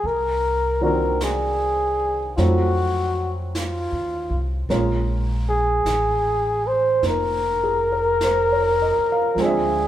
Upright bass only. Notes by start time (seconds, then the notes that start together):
0.04 C2
2.37 F2
3.92 D#2
4.30 C2
4.69 A#1
5.85 A1
7.02 F1
8.97 muted upright bass stroke
9.36 D2